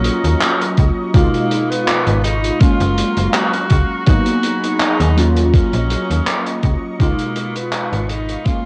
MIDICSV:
0, 0, Header, 1, 6, 480
1, 0, Start_track
1, 0, Tempo, 731707
1, 750, Time_signature, 4, 2, 24, 8
1, 5678, End_track
2, 0, Start_track
2, 0, Title_t, "Analog synth pad"
2, 0, Program_c, 0, 89
2, 0, Note_on_c, 0, 54, 85
2, 0, Note_on_c, 0, 75, 75
2, 0, Note_on_c, 0, 82, 78
2, 0, Note_on_c, 0, 85, 93
2, 738, Note_off_c, 0, 82, 0
2, 739, Note_off_c, 0, 54, 0
2, 752, Note_on_c, 0, 65, 83
2, 752, Note_on_c, 0, 83, 76
2, 1690, Note_off_c, 0, 75, 0
2, 1702, Note_off_c, 0, 65, 0
2, 1702, Note_off_c, 0, 83, 0
2, 1711, Note_on_c, 0, 54, 81
2, 1712, Note_on_c, 0, 77, 76
2, 1712, Note_on_c, 0, 82, 75
2, 2644, Note_off_c, 0, 85, 0
2, 2661, Note_off_c, 0, 54, 0
2, 2662, Note_off_c, 0, 77, 0
2, 2671, Note_on_c, 0, 68, 82
2, 2672, Note_on_c, 0, 83, 88
2, 2673, Note_on_c, 0, 78, 75
2, 3384, Note_off_c, 0, 68, 0
2, 3384, Note_off_c, 0, 78, 0
2, 3384, Note_off_c, 0, 83, 0
2, 3393, Note_on_c, 0, 54, 84
2, 3393, Note_on_c, 0, 75, 74
2, 3393, Note_on_c, 0, 85, 94
2, 4565, Note_off_c, 0, 82, 0
2, 4580, Note_off_c, 0, 54, 0
2, 4590, Note_on_c, 0, 65, 82
2, 4590, Note_on_c, 0, 83, 78
2, 5530, Note_off_c, 0, 75, 0
2, 5541, Note_off_c, 0, 65, 0
2, 5541, Note_off_c, 0, 83, 0
2, 5551, Note_on_c, 0, 77, 74
2, 5552, Note_on_c, 0, 54, 83
2, 5552, Note_on_c, 0, 82, 79
2, 5678, Note_off_c, 0, 54, 0
2, 5678, Note_off_c, 0, 77, 0
2, 5678, Note_off_c, 0, 82, 0
2, 5678, Note_off_c, 0, 85, 0
2, 5678, End_track
3, 0, Start_track
3, 0, Title_t, "Tenor saxophone"
3, 0, Program_c, 1, 66
3, 0, Note_on_c, 1, 61, 92
3, 486, Note_off_c, 1, 61, 0
3, 750, Note_on_c, 1, 58, 97
3, 1116, Note_on_c, 1, 59, 100
3, 1126, Note_off_c, 1, 58, 0
3, 1463, Note_off_c, 1, 59, 0
3, 1467, Note_on_c, 1, 63, 101
3, 1709, Note_on_c, 1, 65, 117
3, 1719, Note_off_c, 1, 63, 0
3, 2186, Note_off_c, 1, 65, 0
3, 2190, Note_on_c, 1, 66, 118
3, 2644, Note_off_c, 1, 66, 0
3, 2668, Note_on_c, 1, 66, 120
3, 3147, Note_on_c, 1, 63, 107
3, 3157, Note_off_c, 1, 66, 0
3, 3456, Note_off_c, 1, 63, 0
3, 3631, Note_on_c, 1, 61, 98
3, 4325, Note_off_c, 1, 61, 0
3, 4591, Note_on_c, 1, 58, 101
3, 4958, Note_on_c, 1, 59, 96
3, 4968, Note_off_c, 1, 58, 0
3, 5307, Note_on_c, 1, 63, 109
3, 5317, Note_off_c, 1, 59, 0
3, 5548, Note_on_c, 1, 65, 115
3, 5558, Note_off_c, 1, 63, 0
3, 5678, Note_off_c, 1, 65, 0
3, 5678, End_track
4, 0, Start_track
4, 0, Title_t, "Synth keys"
4, 0, Program_c, 2, 88
4, 0, Control_c, 2, 64, 127
4, 0, Note_on_c, 2, 54, 92
4, 0, Note_on_c, 2, 58, 86
4, 0, Note_on_c, 2, 61, 88
4, 0, Note_on_c, 2, 65, 102
4, 701, Note_off_c, 2, 54, 0
4, 705, Note_off_c, 2, 58, 0
4, 708, Note_off_c, 2, 61, 0
4, 711, Note_off_c, 2, 65, 0
4, 744, Note_on_c, 2, 56, 81
4, 751, Note_on_c, 2, 47, 77
4, 757, Note_on_c, 2, 63, 77
4, 758, Control_c, 2, 64, 0
4, 763, Note_on_c, 2, 65, 89
4, 885, Control_c, 2, 64, 127
4, 1662, Note_off_c, 2, 56, 0
4, 1666, Note_off_c, 2, 47, 0
4, 1669, Note_off_c, 2, 63, 0
4, 1672, Note_off_c, 2, 65, 0
4, 1703, Note_on_c, 2, 56, 79
4, 1710, Note_on_c, 2, 58, 75
4, 1717, Note_on_c, 2, 61, 70
4, 1721, Control_c, 2, 64, 0
4, 1723, Note_on_c, 2, 77, 87
4, 1846, Control_c, 2, 64, 127
4, 2622, Note_off_c, 2, 56, 0
4, 2626, Note_off_c, 2, 58, 0
4, 2629, Note_off_c, 2, 61, 0
4, 2632, Note_off_c, 2, 77, 0
4, 2663, Note_on_c, 2, 54, 78
4, 2669, Note_on_c, 2, 58, 74
4, 2676, Note_on_c, 2, 59, 70
4, 2678, Control_c, 2, 64, 0
4, 2682, Note_on_c, 2, 63, 90
4, 2777, Control_c, 2, 64, 127
4, 3342, Note_off_c, 2, 54, 0
4, 3345, Note_off_c, 2, 58, 0
4, 3349, Note_off_c, 2, 59, 0
4, 3352, Note_off_c, 2, 63, 0
4, 3382, Note_on_c, 2, 54, 92
4, 3388, Note_on_c, 2, 58, 87
4, 3395, Note_on_c, 2, 61, 87
4, 3399, Control_c, 2, 64, 0
4, 3402, Note_on_c, 2, 65, 103
4, 3502, Control_c, 2, 64, 127
4, 4541, Note_off_c, 2, 54, 0
4, 4545, Note_off_c, 2, 58, 0
4, 4548, Note_off_c, 2, 61, 0
4, 4551, Note_off_c, 2, 65, 0
4, 4582, Note_on_c, 2, 56, 78
4, 4589, Note_on_c, 2, 47, 75
4, 4595, Note_on_c, 2, 63, 71
4, 4600, Control_c, 2, 64, 0
4, 4602, Note_on_c, 2, 65, 88
4, 4714, Control_c, 2, 64, 127
4, 5501, Note_off_c, 2, 56, 0
4, 5505, Note_off_c, 2, 47, 0
4, 5508, Note_off_c, 2, 63, 0
4, 5512, Note_off_c, 2, 65, 0
4, 5541, Note_on_c, 2, 56, 80
4, 5549, Note_on_c, 2, 58, 71
4, 5556, Note_on_c, 2, 61, 77
4, 5560, Control_c, 2, 64, 0
4, 5562, Note_on_c, 2, 77, 87
4, 5669, Control_c, 2, 64, 127
4, 5678, Note_off_c, 2, 56, 0
4, 5678, Note_off_c, 2, 58, 0
4, 5678, Note_off_c, 2, 61, 0
4, 5678, Note_off_c, 2, 77, 0
4, 5678, End_track
5, 0, Start_track
5, 0, Title_t, "FM bass"
5, 0, Program_c, 3, 39
5, 0, Note_on_c, 3, 34, 89
5, 66, Note_off_c, 3, 34, 0
5, 158, Note_on_c, 3, 39, 85
5, 230, Note_off_c, 3, 39, 0
5, 511, Note_on_c, 3, 37, 92
5, 593, Note_off_c, 3, 37, 0
5, 752, Note_on_c, 3, 37, 97
5, 833, Note_off_c, 3, 37, 0
5, 1359, Note_on_c, 3, 32, 100
5, 1646, Note_off_c, 3, 32, 0
5, 1712, Note_on_c, 3, 30, 44
5, 1814, Note_off_c, 3, 30, 0
5, 1839, Note_on_c, 3, 30, 89
5, 1987, Note_off_c, 3, 30, 0
5, 2080, Note_on_c, 3, 30, 81
5, 2151, Note_off_c, 3, 30, 0
5, 2432, Note_on_c, 3, 37, 93
5, 2514, Note_off_c, 3, 37, 0
5, 2672, Note_on_c, 3, 32, 95
5, 2754, Note_off_c, 3, 32, 0
5, 3279, Note_on_c, 3, 39, 101
5, 3685, Note_off_c, 3, 39, 0
5, 3761, Note_on_c, 3, 34, 90
5, 3907, Note_off_c, 3, 34, 0
5, 4002, Note_on_c, 3, 39, 81
5, 4072, Note_off_c, 3, 39, 0
5, 4352, Note_on_c, 3, 37, 95
5, 4433, Note_off_c, 3, 37, 0
5, 4592, Note_on_c, 3, 37, 101
5, 4673, Note_off_c, 3, 37, 0
5, 5200, Note_on_c, 3, 32, 100
5, 5487, Note_off_c, 3, 32, 0
5, 5550, Note_on_c, 3, 30, 45
5, 5653, Note_off_c, 3, 30, 0
5, 5678, End_track
6, 0, Start_track
6, 0, Title_t, "Drums"
6, 28, Note_on_c, 9, 42, 76
6, 94, Note_off_c, 9, 42, 0
6, 160, Note_on_c, 9, 42, 53
6, 226, Note_off_c, 9, 42, 0
6, 271, Note_on_c, 9, 39, 119
6, 276, Note_on_c, 9, 42, 94
6, 337, Note_off_c, 9, 39, 0
6, 341, Note_off_c, 9, 42, 0
6, 403, Note_on_c, 9, 42, 59
6, 469, Note_off_c, 9, 42, 0
6, 507, Note_on_c, 9, 42, 57
6, 511, Note_on_c, 9, 36, 61
6, 573, Note_off_c, 9, 42, 0
6, 576, Note_off_c, 9, 36, 0
6, 750, Note_on_c, 9, 42, 107
6, 751, Note_on_c, 9, 36, 123
6, 816, Note_off_c, 9, 36, 0
6, 816, Note_off_c, 9, 42, 0
6, 881, Note_on_c, 9, 42, 55
6, 946, Note_off_c, 9, 42, 0
6, 993, Note_on_c, 9, 42, 71
6, 1058, Note_off_c, 9, 42, 0
6, 1128, Note_on_c, 9, 42, 55
6, 1193, Note_off_c, 9, 42, 0
6, 1231, Note_on_c, 9, 42, 84
6, 1235, Note_on_c, 9, 39, 120
6, 1296, Note_off_c, 9, 42, 0
6, 1300, Note_off_c, 9, 39, 0
6, 1357, Note_on_c, 9, 42, 55
6, 1423, Note_off_c, 9, 42, 0
6, 1472, Note_on_c, 9, 42, 78
6, 1538, Note_off_c, 9, 42, 0
6, 1601, Note_on_c, 9, 42, 63
6, 1666, Note_off_c, 9, 42, 0
6, 1709, Note_on_c, 9, 42, 96
6, 1712, Note_on_c, 9, 36, 124
6, 1775, Note_off_c, 9, 42, 0
6, 1777, Note_off_c, 9, 36, 0
6, 1839, Note_on_c, 9, 42, 57
6, 1904, Note_off_c, 9, 42, 0
6, 1954, Note_on_c, 9, 42, 85
6, 2020, Note_off_c, 9, 42, 0
6, 2079, Note_on_c, 9, 42, 52
6, 2144, Note_off_c, 9, 42, 0
6, 2188, Note_on_c, 9, 39, 127
6, 2188, Note_on_c, 9, 42, 96
6, 2254, Note_off_c, 9, 39, 0
6, 2254, Note_off_c, 9, 42, 0
6, 2318, Note_on_c, 9, 42, 53
6, 2384, Note_off_c, 9, 42, 0
6, 2426, Note_on_c, 9, 42, 62
6, 2432, Note_on_c, 9, 36, 62
6, 2492, Note_off_c, 9, 42, 0
6, 2497, Note_off_c, 9, 36, 0
6, 2667, Note_on_c, 9, 42, 94
6, 2672, Note_on_c, 9, 36, 123
6, 2732, Note_off_c, 9, 42, 0
6, 2737, Note_off_c, 9, 36, 0
6, 2794, Note_on_c, 9, 42, 53
6, 2859, Note_off_c, 9, 42, 0
6, 2907, Note_on_c, 9, 42, 72
6, 2973, Note_off_c, 9, 42, 0
6, 3042, Note_on_c, 9, 42, 54
6, 3108, Note_off_c, 9, 42, 0
6, 3149, Note_on_c, 9, 39, 104
6, 3152, Note_on_c, 9, 42, 89
6, 3215, Note_off_c, 9, 39, 0
6, 3217, Note_off_c, 9, 42, 0
6, 3281, Note_on_c, 9, 42, 56
6, 3346, Note_off_c, 9, 42, 0
6, 3395, Note_on_c, 9, 42, 84
6, 3461, Note_off_c, 9, 42, 0
6, 3518, Note_on_c, 9, 42, 53
6, 3584, Note_off_c, 9, 42, 0
6, 3632, Note_on_c, 9, 36, 113
6, 3634, Note_on_c, 9, 42, 90
6, 3697, Note_off_c, 9, 36, 0
6, 3700, Note_off_c, 9, 42, 0
6, 3759, Note_on_c, 9, 42, 54
6, 3825, Note_off_c, 9, 42, 0
6, 3871, Note_on_c, 9, 42, 78
6, 3937, Note_off_c, 9, 42, 0
6, 4005, Note_on_c, 9, 42, 58
6, 4071, Note_off_c, 9, 42, 0
6, 4109, Note_on_c, 9, 42, 107
6, 4113, Note_on_c, 9, 39, 109
6, 4174, Note_off_c, 9, 42, 0
6, 4179, Note_off_c, 9, 39, 0
6, 4240, Note_on_c, 9, 42, 57
6, 4306, Note_off_c, 9, 42, 0
6, 4349, Note_on_c, 9, 42, 58
6, 4351, Note_on_c, 9, 36, 59
6, 4415, Note_off_c, 9, 42, 0
6, 4417, Note_off_c, 9, 36, 0
6, 4591, Note_on_c, 9, 36, 118
6, 4592, Note_on_c, 9, 42, 89
6, 4656, Note_off_c, 9, 36, 0
6, 4658, Note_off_c, 9, 42, 0
6, 4714, Note_on_c, 9, 42, 60
6, 4779, Note_off_c, 9, 42, 0
6, 4827, Note_on_c, 9, 42, 71
6, 4893, Note_off_c, 9, 42, 0
6, 4958, Note_on_c, 9, 42, 56
6, 5024, Note_off_c, 9, 42, 0
6, 5068, Note_on_c, 9, 39, 101
6, 5069, Note_on_c, 9, 42, 100
6, 5134, Note_off_c, 9, 39, 0
6, 5135, Note_off_c, 9, 42, 0
6, 5201, Note_on_c, 9, 42, 55
6, 5267, Note_off_c, 9, 42, 0
6, 5310, Note_on_c, 9, 42, 74
6, 5376, Note_off_c, 9, 42, 0
6, 5438, Note_on_c, 9, 42, 61
6, 5504, Note_off_c, 9, 42, 0
6, 5548, Note_on_c, 9, 42, 102
6, 5550, Note_on_c, 9, 36, 118
6, 5614, Note_off_c, 9, 42, 0
6, 5616, Note_off_c, 9, 36, 0
6, 5678, End_track
0, 0, End_of_file